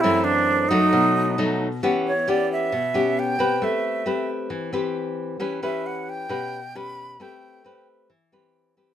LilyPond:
<<
  \new Staff \with { instrumentName = "Flute" } { \time 4/4 \key e \minor \tempo 4 = 134 e'8 d'4 dis'2 r8 | r8 cis''8 d''8 e''4. g''4 | e''4. r2 r8 | r8 e''8 fis''8 g''4. b''4 |
g''4. r2 r8 | }
  \new Staff \with { instrumentName = "Nylon-string guitar" } { \time 4/4 \key e \minor << { <e a c'>4. <fis a dis'>4. <fis a dis'>8 r8 | <b cis' g'>8 r8 <b cis' g'>4 r8 <b cis' g'>4 <c' g' b'>8~ | <c' g' b'>4 <c' g' b'>4. <c' g' b'>4. | <cis' g' b'>8 <cis' g' b'>4. <cis' g' b'>8 r8 <cis' g' b'>4 |
<c' g' b'>4 <c' g' b'>4 r8 <c' g' b'>4 <c' g' b'>8 | } \\ { fis,2 b,2 | e2 b,2 | a2 e2 | e2 b,2 |
a2 e2 | } >> }
>>